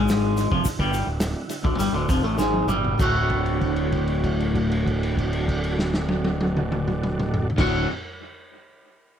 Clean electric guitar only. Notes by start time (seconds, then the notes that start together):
Already playing: G#2 G#3
0.51 F2 F3
0.65 muted clean electric guitar stroke
0.79 G2 G3
1.07 D2
1.63 D2 D3
1.79 G2 G3
1.93 D2 D3
2.09 F2 F3
2.23 A2 A3
2.38 G#2 G#3
2.68 G2 G3
2.98 D2 A2 D3 A3
3.02 F#4
7.57 D2 A2 D3 A3
7.61 F#4